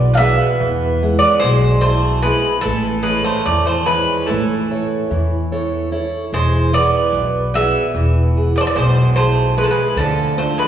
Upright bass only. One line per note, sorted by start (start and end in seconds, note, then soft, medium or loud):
0.00 0.35 B1 medium
0.61 1.18 E2 loud
1.43 2.29 B1 loud
2.65 3.22 A1 medium
3.47 4.04 E2 medium
4.28 4.85 A1 medium
5.11 5.96 E2 medium
6.33 6.89 E1 loud
7.13 7.70 B1 medium
7.94 8.52 E1 loud
8.76 9.61 B1 medium
9.96 10.54 D2 loud